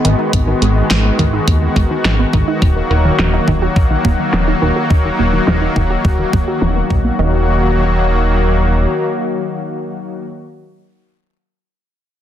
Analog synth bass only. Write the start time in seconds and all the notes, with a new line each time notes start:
0.05 G#1
0.33 G#1
0.62 G#1
0.90 G#1
1.19 G#1
1.48 D#2
1.76 G#1
2.05 G#1
2.33 G#1
2.62 D#1
2.90 D#1
3.19 D#1
3.48 D#1
3.76 A#1
4.05 D#1
4.33 D#1
4.62 D#1
4.90 D#1
5.19 D#1
5.48 D#1
5.76 D#1
6.05 D#1
6.33 D#1
6.62 D#1
6.90 A#1
7.19 D#1